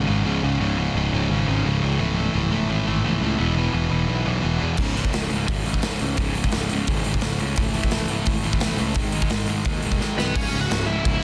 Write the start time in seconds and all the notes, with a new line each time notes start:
0.06 G#1 C#2 G#2 C#3
0.25 C#1 C#2 G#2 C#3
0.42 C#2 G#2 C#3
0.60 C#1 C#2 G#2 C#3
0.77 C#2 G#2 C#3
0.95 C#1 C#2 G#2 C#3
1.13 C#1 C#2 G#2 C#3
1.29 G#1 C#2 G#2 C#3
1.47 G#1 C#2 G#2 C#3
1.64 C#1 C#2 G#2 C#3
1.82 C#2 G#2 C#3
1.99 C#1 A2 E3 A3
2.17 A2 E3 A3
2.34 C#1 A2 E3 A3
2.50 C#1 A2 E3 A3
2.68 G#1 A2 E3 A3
2.86 G#1 A2 E3 A3
3.04 C#1 A2 E3 A3
3.21 C#2 A2 E3 A3
3.37 E1 E2 B2 E3
3.57 E2 B2 E3
3.73 E1 E2 B2 E3
3.91 E1 E2 B2 E3
4.07 B1 E2 B2 E3
4.26 B1 E2 B2 E3
4.41 E1 E2 B2
4.45 B2 E3
4.62 E2 B2 E3
4.77 C#1 C#2 G#2 C#3, kick, crash
4.95 C#2 G#2 C#3, open hi-hat
5.05 kick
5.13 C#1 C#2 G#2 C#3, snare, open hi-hat
5.30 C#1 C#2 G#2 C#3, open hi-hat
5.47 G#1 C#2 G#2 C#3, kick, open hi-hat
5.64 G#1 C#2 G#2 C#3, open hi-hat
5.74 kick
5.82 C#1 C#2 G#2 C#3, snare, open hi-hat
5.99 C#2 G#2 C#3, open hi-hat
6.17 C#1 C#2 G#2 C#3, kick, open hi-hat
6.35 C#2 G#2 C#3, open hi-hat
6.44 kick
6.52 C#1 C#2 G#2 C#3, snare, open hi-hat
6.70 C#1 C#2 G#2 C#3, open hi-hat
6.87 G#1 C#2 G#2 C#3, kick, open hi-hat
7.04 G#1 C#2 G#2 C#3, open hi-hat
7.14 kick
7.21 C#1 C#2 G#2 C#3, snare, open hi-hat
7.39 C#2 G#2 C#3, open hi-hat
7.56 C#1 A2 E3 A3, kick, open hi-hat
7.73 A2 E3 A3, open hi-hat
7.83 kick
7.91 C#1 A2 E3 A3, snare, open hi-hat
8.08 C#1 A2 E3 A3, open hi-hat
8.26 G#1 A2 E3 A3, kick, open hi-hat
8.44 G#1 A2 E3 A3, open hi-hat
8.53 kick
8.60 C#1 A2 E3 A3, snare, open hi-hat
8.78 C#2 A2 E3 A3, open hi-hat
8.94 G#1 G#2 D#3 G#3, kick, open hi-hat
9.12 G#2 D#3 G#3, open hi-hat
9.22 kick
9.30 G#1 G#2 D#3 G#3, snare, open hi-hat
9.46 G#1 G#2 D#3 G#3, open hi-hat
9.65 D#2 G#2 D#3 G#3, kick, open hi-hat
9.82 D#1 G#2 D#3 G#3, open hi-hat
9.92 kick
9.99 G#1 G#2 D#3 G#3, snare
10.18 C2 G#2 D#3 G#3 B3 B4, snare
10.34 C#1 C#2 G#2 C#3 C#4 C#5, kick, crash
10.53 C#1
10.61 F#4 F#5
10.68 C#1 C#2 G#2 C#3, snare, crash
10.86 C#1 C#2 G#2 C#3 E4 E5
11.03 C#1 C#2 G#2 C#3, kick, crash